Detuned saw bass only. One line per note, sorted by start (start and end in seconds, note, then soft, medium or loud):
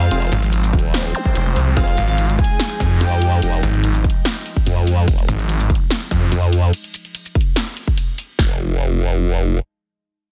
0.32 0.72 G#1 loud
1.35 1.55 F1 loud
1.56 1.75 C2 medium
1.97 2.37 G#1 loud
2.80 2.99 F2 loud
3.63 4.03 G#1 loud
5.29 5.68 G#1 loud
6.11 6.30 F2 loud